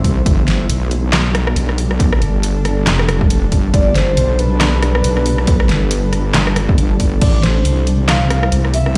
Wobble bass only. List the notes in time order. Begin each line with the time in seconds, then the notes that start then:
0.04 C2
0.26 G1
0.69 B1
1.56 B1
2.21 G1
2.87 F1
3.52 G1
3.74 G1
4.17 B1
5.04 B1
5.69 G1
6.35 G1
7.22 A1
7.65 C2
8.52 C2